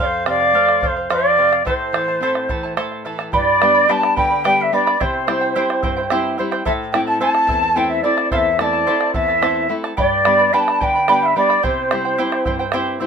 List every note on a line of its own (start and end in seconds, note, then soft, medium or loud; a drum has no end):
0.00 1.61 F2 medium
0.00 0.25 A4 medium
0.00 0.26 C5 medium
0.00 0.06 D5 medium
0.00 0.24 F5 medium
0.00 0.26 F5 medium
0.05 0.25 C5 medium
0.26 0.53 C3 medium
0.26 0.40 A4 medium
0.26 0.40 C5 medium
0.26 0.82 D5 loud
0.26 0.39 F5 medium
0.26 0.84 F5 medium
0.26 bombo rim medium
0.40 0.53 C5 soft
0.40 0.54 F5 soft
0.40 bombo rim soft
0.53 0.80 A3 medium
0.53 0.81 A4 medium
0.53 0.82 C5 medium
0.53 0.82 F5 medium
0.69 bombo rim medium
0.81 1.08 C3 soft
0.81 0.96 A4 medium
0.81 0.96 C5 medium
0.81 0.87 D5 medium
0.81 0.95 F5 medium
0.81 1.11 F5 medium
0.81 bombo low medium
0.86 1.10 C5 medium
0.96 1.09 C5 soft
0.96 1.10 F5 soft
0.96 bombo rim soft
1.10 1.37 F3 medium
1.10 1.36 A4 medium
1.10 1.37 C5 medium
1.10 1.63 D5 loud
1.10 1.37 F5 medium
1.10 1.63 F5 medium
1.10 bombo rim medium
1.37 1.65 C3 soft
1.37 1.51 A4 medium
1.37 1.52 C5 medium
1.37 1.51 F5 medium
1.52 1.65 C5 soft
1.52 1.66 F5 medium
1.52 bombo rim medium
1.65 3.29 A2 medium
1.65 1.94 E4 medium
1.65 1.93 A4 medium
1.65 2.73 C5 medium
1.65 1.93 C5 medium
1.65 2.74 C5 medium
1.65 1.93 E5 medium
1.65 1.94 A5 medium
1.65 bombo rim soft
1.65 bombo low medium
1.80 bombo rim soft
1.93 2.20 E3 medium
1.93 2.08 E4 medium
1.93 2.07 A4 medium
1.93 2.07 E5 medium
1.93 2.07 A5 medium
1.93 bombo rim medium
2.08 2.21 E4 soft
2.08 2.22 A4 soft
2.08 2.22 A5 medium
2.21 2.48 C4 medium
2.21 2.48 E4 medium
2.21 2.49 A4 medium
2.21 2.50 C5 medium
2.21 2.48 E5 medium
2.21 2.49 A5 medium
2.35 bombo rim medium
2.49 2.76 E3 medium
2.49 2.63 E4 medium
2.49 2.63 A4 medium
2.49 2.63 E5 medium
2.49 2.62 A5 medium
2.49 bombo low medium
2.63 2.76 E4 soft
2.63 2.76 A4 medium
2.63 2.76 A5 medium
2.77 3.04 A3 soft
2.77 3.04 E4 medium
2.77 3.04 A4 medium
2.77 3.05 C5 medium
2.77 3.04 E5 medium
2.77 3.05 A5 medium
2.77 bombo rim medium
2.92 bombo rim soft
3.05 3.32 E3 soft
3.05 3.19 E4 medium
3.05 3.19 A4 medium
3.05 3.19 E5 medium
3.05 3.18 A5 medium
3.05 bombo rim soft
3.19 3.33 E4 soft
3.19 3.33 A4 medium
3.19 3.33 A5 medium
3.19 bombo rim medium
3.33 3.87 G2 medium
3.33 3.61 G4 medium
3.33 3.60 B4 medium
3.33 3.60 D5 medium
3.33 3.91 D5 medium
3.33 3.92 D5 medium
3.33 3.59 G5 medium
3.33 3.61 B5 medium
3.33 bombo rim soft
3.33 bombo low medium
3.61 3.88 G3 medium
3.61 3.89 B3 soft
3.61 3.88 D4 medium
3.61 3.75 B4 medium
3.61 3.74 D5 medium
3.61 3.74 G5 medium
3.61 3.73 B5 medium
3.61 bombo rim medium
3.74 3.88 B4 soft
3.74 3.88 D5 soft
3.74 3.88 B5 medium
3.88 4.33 G3 soft
3.88 4.34 B3 soft
3.88 4.34 D4 soft
3.88 4.16 G4 medium
3.88 4.15 B4 medium
3.88 4.16 D5 medium
3.88 4.15 G5 medium
3.88 4.16 A5 medium
3.88 4.17 A5 medium
3.88 4.16 B5 medium
4.03 bombo rim medium
4.16 4.71 D3 medium
4.16 4.30 B4 medium
4.16 4.30 D5 medium
4.16 4.30 G5 medium
4.16 4.43 G5 loud
4.16 4.43 G5 medium
4.16 4.29 B5 medium
4.16 bombo low medium
4.30 4.44 B4 soft
4.30 4.44 D5 medium
4.30 4.44 B5 medium
4.44 4.71 G3 soft
4.44 4.72 B3 soft
4.44 4.72 D4 medium
4.44 4.72 G4 medium
4.44 4.72 B4 medium
4.44 4.72 D5 medium
4.44 4.71 G5 medium
4.44 4.62 G5 medium
4.44 4.63 G5 medium
4.44 4.72 B5 medium
4.44 bombo rim medium
4.61 4.75 E5 medium
4.61 4.78 E5 medium
4.72 4.95 G3 soft
4.72 4.95 B3 soft
4.72 4.95 D4 medium
4.72 4.86 B4 medium
4.72 5.02 D5 medium
4.72 4.86 D5 medium
4.72 5.03 D5 medium
4.72 4.86 G5 medium
4.72 4.85 B5 medium
4.72 bombo rim soft
4.86 5.00 B4 soft
4.86 5.00 D5 medium
4.86 5.00 B5 medium
4.86 bombo rim medium
5.00 5.54 C3 medium
5.00 5.27 E4 medium
5.00 5.28 G4 medium
5.00 5.27 C5 medium
5.00 6.11 C5 medium
5.00 6.12 C5 medium
5.00 5.26 E5 medium
5.00 5.27 G5 medium
5.00 bombo rim soft
5.00 bombo low medium
5.27 5.55 G3 medium
5.27 5.55 C4 soft
5.27 5.41 E4 medium
5.27 5.55 E4 medium
5.27 5.41 C5 medium
5.27 5.41 E5 medium
5.27 5.40 G5 medium
5.27 bombo rim medium
5.41 5.55 E4 soft
5.41 5.55 C5 soft
5.41 5.55 G5 medium
5.55 6.00 G3 medium
5.55 6.00 C4 soft
5.55 5.82 E4 medium
5.55 6.00 E4 medium
5.55 5.83 G4 medium
5.55 5.83 C5 medium
5.55 5.81 E5 medium
5.55 5.83 G5 medium
5.70 bombo rim medium
5.82 6.37 G2 medium
5.82 5.97 E4 medium
5.82 5.96 C5 medium
5.82 5.97 E5 medium
5.82 5.95 G5 medium
5.82 bombo low medium
5.97 6.10 E4 soft
5.97 6.10 C5 medium
5.97 6.11 G5 medium
6.10 6.38 G3 medium
6.10 6.38 C4 soft
6.10 6.37 E4 medium
6.10 6.39 E4 medium
6.10 6.38 G4 medium
6.10 6.38 C5 loud
6.10 6.37 E5 medium
6.10 6.38 G5 loud
6.10 bombo rim medium
6.38 6.61 G3 medium
6.38 6.61 C4 soft
6.38 6.52 E4 medium
6.38 6.62 E4 medium
6.38 6.51 C5 medium
6.38 6.52 E5 medium
6.38 6.50 G5 medium
6.38 bombo rim soft
6.51 6.65 E4 soft
6.51 6.64 C5 soft
6.51 6.66 G5 medium
6.51 bombo rim medium
6.65 7.20 A2 medium
6.65 6.93 E4 medium
6.65 6.93 A4 medium
6.65 6.93 C5 medium
6.65 6.71 E5 loud
6.65 6.72 E5 medium
6.65 6.92 E5 medium
6.65 6.94 A5 medium
6.65 bombo rim soft
6.65 bombo low medium
6.92 7.19 A3 medium
6.92 7.20 C4 medium
6.92 7.07 E4 medium
6.92 7.20 E4 medium
6.92 7.06 A4 medium
6.92 7.07 E5 medium
6.92 6.98 G5 medium
6.92 7.00 G5 medium
6.92 7.06 A5 medium
6.92 bombo rim medium
7.07 7.20 E4 soft
7.07 7.20 A4 medium
7.07 7.20 A5 medium
7.07 7.21 A5 medium
7.20 7.65 A3 soft
7.20 7.66 C4 soft
7.20 7.48 E4 medium
7.20 7.66 E4 medium
7.20 7.48 A4 medium
7.20 7.49 C5 medium
7.20 7.47 E5 medium
7.20 7.77 A5 loud
7.20 7.78 A5 loud
7.20 7.49 A5 medium
7.35 bombo rim medium
7.47 8.02 E2 medium
7.47 7.63 E4 medium
7.47 7.62 A4 medium
7.47 7.63 E5 medium
7.47 7.61 A5 medium
7.47 bombo low medium
7.62 7.75 E4 soft
7.62 7.76 A4 soft
7.62 7.76 A5 medium
7.75 8.02 A3 medium
7.75 8.03 C4 soft
7.75 8.03 E4 medium
7.75 8.03 A4 medium
7.75 8.04 C5 medium
7.75 8.02 E5 medium
7.75 7.88 G5 medium
7.75 7.91 G5 medium
7.75 8.04 A5 medium
7.88 8.01 E5 medium
7.88 8.03 E5 medium
8.02 8.48 A3 soft
8.02 8.48 C4 soft
8.02 8.17 E4 medium
8.02 8.49 E4 medium
8.02 8.17 A4 medium
8.02 8.29 D5 medium
8.02 8.30 D5 medium
8.02 8.18 E5 medium
8.02 8.16 A5 medium
8.02 bombo rim soft
8.17 8.31 E4 soft
8.17 8.31 A4 medium
8.17 8.31 A5 medium
8.17 bombo rim medium
8.30 8.86 E2 medium
8.30 8.58 E4 medium
8.30 8.59 A4 medium
8.30 8.60 C5 medium
8.30 8.57 E5 medium
8.30 8.58 E5 medium
8.30 8.37 F5 medium
8.30 8.59 A5 medium
8.30 bombo rim soft
8.30 bombo low medium
8.36 8.58 E5 medium
8.46 bombo rim soft
8.59 8.87 A3 soft
8.59 8.87 C4 soft
8.59 8.73 E4 medium
8.59 8.88 E4 medium
8.59 8.73 A4 medium
8.59 8.73 E5 medium
8.59 8.64 E5 medium
8.59 9.11 A5 medium
8.59 8.72 A5 medium
8.59 bombo rim medium
8.63 9.11 D5 medium
8.73 8.86 E4 soft
8.73 8.86 A4 soft
8.73 8.87 A5 medium
8.87 9.32 A3 soft
8.87 9.32 C4 soft
8.87 9.14 E4 medium
8.87 9.33 E4 soft
8.87 9.14 A4 medium
8.87 9.15 C5 medium
8.87 9.13 E5 medium
8.87 9.15 A5 medium
8.87 bombo rim soft
9.01 bombo rim medium
9.14 9.68 E2 medium
9.14 9.28 E4 medium
9.14 9.28 A4 medium
9.14 9.28 E5 medium
9.14 9.73 E5 medium
9.14 9.74 E5 medium
9.14 9.27 A5 medium
9.14 bombo low medium
9.28 9.41 E4 soft
9.28 9.42 A4 soft
9.28 9.41 A5 medium
9.28 bombo rim soft
9.41 9.68 A3 soft
9.41 9.68 C4 soft
9.41 9.69 E4 medium
9.41 9.68 E4 medium
9.41 9.70 A4 medium
9.41 9.70 C5 medium
9.41 9.68 E5 medium
9.41 9.69 A5 medium
9.41 bombo rim medium
9.69 9.91 A3 medium
9.69 9.92 C4 soft
9.69 9.92 E4 medium
9.69 9.84 E4 medium
9.69 9.83 A4 medium
9.69 9.84 E5 medium
9.69 9.83 A5 medium
9.84 9.97 E4 soft
9.84 9.98 A4 medium
9.84 9.97 A5 medium
9.84 bombo rim medium
9.97 10.51 G2 medium
9.97 10.25 G4 medium
9.97 10.24 B4 medium
9.97 10.24 D5 medium
9.97 10.55 D5 medium
9.97 10.03 E5 medium
9.97 10.23 G5 medium
9.97 10.24 B5 medium
9.97 bombo rim soft
9.97 bombo low medium
10.02 10.56 D5 medium
10.24 10.52 G3 medium
10.24 10.52 B3 soft
10.24 10.53 D4 medium
10.24 10.39 B4 medium
10.24 10.38 D5 medium
10.24 10.39 G5 medium
10.24 10.38 B5 medium
10.24 bombo rim medium
10.39 10.52 B4 soft
10.39 10.53 D5 soft
10.39 10.53 B5 medium
10.53 10.97 G3 soft
10.53 10.97 B3 soft
10.53 10.97 D4 medium
10.53 10.80 G4 medium
10.53 10.80 B4 medium
10.53 10.80 D5 medium
10.53 10.79 G5 medium
10.53 10.84 A5 medium
10.53 10.83 A5 medium
10.53 10.81 B5 medium
10.68 bombo rim medium
10.80 11.34 D3 medium
10.80 10.95 B4 medium
10.80 10.95 D5 medium
10.80 10.94 G5 medium
10.80 11.08 G5 medium
10.80 11.09 G5 medium
10.80 10.94 B5 medium
10.80 bombo low medium
10.95 11.08 B4 soft
10.95 11.08 D5 medium
10.95 11.08 B5 soft
11.08 11.35 G3 soft
11.08 11.35 B3 soft
11.08 11.36 D4 medium
11.08 11.36 G4 medium
11.08 11.35 B4 medium
11.08 11.35 D5 medium
11.08 11.34 G5 medium
11.08 11.25 G5 medium
11.08 11.27 G5 medium
11.08 11.36 B5 medium
11.08 bombo rim medium
11.23 11.36 E5 medium
11.23 11.37 E5 medium
11.36 11.58 G3 soft
11.36 11.58 B3 soft
11.36 11.58 D4 medium
11.36 11.50 B4 medium
11.36 11.49 D5 medium
11.36 11.62 D5 medium
11.36 11.43 E5 medium
11.36 11.49 G5 medium
11.36 11.48 B5 medium
11.36 bombo rim soft
11.42 11.62 D5 medium
11.49 11.63 B4 soft
11.49 11.63 D5 medium
11.49 11.63 B5 medium
11.49 bombo rim medium
11.63 12.17 C3 medium
11.63 11.90 E4 medium
11.63 11.90 G4 medium
11.63 11.91 C5 medium
11.63 12.69 C5 medium
11.63 11.90 E5 medium
11.63 11.91 G5 medium
11.63 bombo rim soft
11.63 bombo low medium
11.91 12.18 G3 medium
11.91 12.18 C4 soft
11.91 12.05 E4 medium
11.91 12.18 E4 medium
11.91 12.04 C5 medium
11.91 12.04 E5 medium
11.91 12.04 G5 medium
11.91 bombo rim medium
12.05 12.18 E4 soft
12.05 12.18 C5 soft
12.05 12.18 G5 medium
12.18 12.62 G3 soft
12.18 12.63 C4 soft
12.18 12.44 E4 medium
12.18 12.63 E4 medium
12.18 12.45 G4 medium
12.18 12.46 C5 medium
12.18 12.44 E5 medium
12.18 12.45 G5 medium
12.32 bombo rim medium
12.45 12.99 G2 medium
12.45 12.59 E4 medium
12.45 12.59 C5 medium
12.45 12.59 E5 medium
12.45 12.58 G5 medium
12.45 bombo low medium
12.59 12.72 E4 medium
12.59 12.73 C5 medium
12.59 12.73 G5 medium
12.72 12.99 G3 soft
12.72 12.99 C4 soft
12.72 12.99 E4 medium
12.72 13.00 E4 medium
12.72 13.00 G4 medium
12.72 13.00 C5 medium
12.72 12.99 E5 medium
12.72 13.01 G5 loud
12.72 bombo rim medium
13.00 13.07 G3 medium
13.00 13.07 C4 soft
13.00 13.07 E4 medium
13.00 13.07 C5 medium
13.00 13.07 E5 medium
13.00 13.07 G5 medium
13.00 bombo rim soft